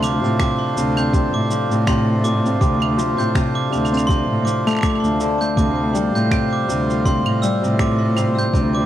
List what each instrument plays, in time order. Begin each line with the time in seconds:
Already playing: cello D2, harp C3 F4, accordion A3 D4 F4 C5
0.03 harp F3, glockenspiel D6, claves, shaker
0.23 cello A2, harp C3, shaker
0.39 harp C3, glockenspiel D6, finger snap, kick, shaker
0.76 cello D2, harp C3, shaker
0.97 harp C4, glockenspiel G6, claves, shaker
1.13 harp C3, kick, shaker
1.34 cello A2, glockenspiel D6
1.51 harp F3, shaker
1.71 cello A2, harp C3, shaker
1.87 harp C3, glockenspiel C6, finger snap, kick, claves, shaker
2.24 harp C3, glockenspiel D6, shaker
2.45 harp C4, shaker
2.61 cello D2, harp C3, glockenspiel D6, kick, shaker
2.82 claves
2.97 harp F3, shaker
3.18 cello A2, harp C3, glockenspiel G6, shaker
3.35 harp C3, finger snap, kick, shaker
3.55 glockenspiel D6
3.72 cello D2, harp C3, claves, shaker
3.85 claves, shaker
3.92 harp C4, shaker
3.97 claves, shaker
4.07 harp C3, glockenspiel C6, kick, shaker
4.30 cello A2
4.45 harp F3, glockenspiel D6, shaker
4.66 harp A3, finger snap, claves, shaker
4.69 finger snap
4.71 finger snap, claves
4.73 finger snap
4.75 finger snap, claves
4.79 finger snap
4.81 harp A3, glockenspiel D6, finger snap
4.83 finger snap, kick, claves, shaker
4.90 claves
4.95 claves
5.04 cello D2, shaker
5.20 harp D3, shaker
5.41 harp A3, glockenspiel G6, shaker
5.56 cello D2, harp C3, accordion G3 C4 C5, glockenspiel D6, kick, shaker
5.94 harp G3, shaker
6.14 cello A2, harp C3, glockenspiel G6, shaker
6.31 harp C3, finger snap, kick, claves, shaker
6.53 glockenspiel D6
6.68 cello D2, harp C3, shaker
6.90 harp F4, shaker
7.05 harp C3, glockenspiel C6, kick, shaker
7.26 cello A2, claves
7.42 harp G3, glockenspiel E6, shaker
7.63 cello A2, harp C3, shaker
7.79 harp C3, glockenspiel D6, finger snap, kick, shaker
8.16 harp C3, claves, shaker
8.36 harp F4, glockenspiel G6, shaker
8.53 cello D2, harp C3, accordion G4, kick, shaker
8.75 glockenspiel D6